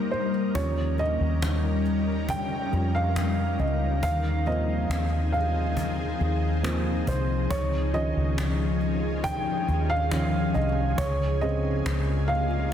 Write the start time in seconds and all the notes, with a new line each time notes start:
Already playing: G3 A#3 D#4 A#4 C5
0.11 C5
0.54 D#2 F3 G3 C#4 D#4 A#4 C#5, cajon bass
0.98 D#5, cajon slap
1.21 D#2
1.42 cajon slap
1.85 cajon slap
2.29 G5, cajon bass, cajon slap
2.72 F2 F3 G3 C#4, cajon slap
2.95 F5
3.16 cajon slap
3.59 C#2 D#5, cajon slap
4.01 D#2 F3 C4 G#4 F5, cajon bass
4.46 F3 A#3 C4 D#5, cajon slap
4.89 D#2, cajon slap
5.32 F5, cajon slap
5.77 cajon bass, cajon slap
6.20 D#2, cajon slap
6.63 F3 A#3 C4, cajon slap
7.07 C2 C5, cajon bass
7.49 F3 C#4 G#4 C#5, cajon bass
7.93 D#3 F3 C#4 D#5, cajon slap
8.17 C#2
8.38 cajon slap
8.81 cajon slap
9.24 G5, cajon bass, cajon slap
9.68 D#2, cajon slap
9.90 F5
10.11 D#3 F3 C#4, cajon slap
10.54 C2 D#5, cajon slap
10.97 C#2 C#3 A#3 F4 C#5, cajon bass
11.41 C#3 G#3 C4 D#5, cajon slap
11.86 C#2, cajon slap
12.28 F5, cajon slap
12.51 cajon slap